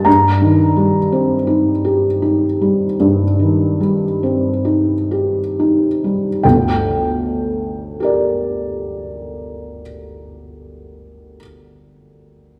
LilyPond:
<<
  \new Staff \with { instrumentName = "Felt piano" } { \time 4/4 \key g \minor \tempo 4 = 39 << { bes''2~ bes''8 r4. | g''1 | } \\ { r1 | r4 <g' bes' d''>2. | } >> }
  \new Staff \with { instrumentName = "Felt piano" } { \clef bass \time 4/4 \key g \minor g,16 ees16 g16 c'16 ees'16 g'16 ees'16 g16 g,16 ees16 g16 c'16 ees'16 g'16 ees'16 g16 | <g,, d,>1 | }
>>